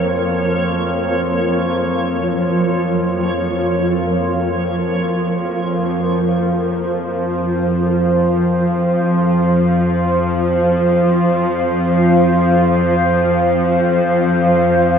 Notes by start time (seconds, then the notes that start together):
Already playing: F2 F3 A#3 F4 A#4 C#5
3.97 F2 F3
4.90 C5
7.30 F5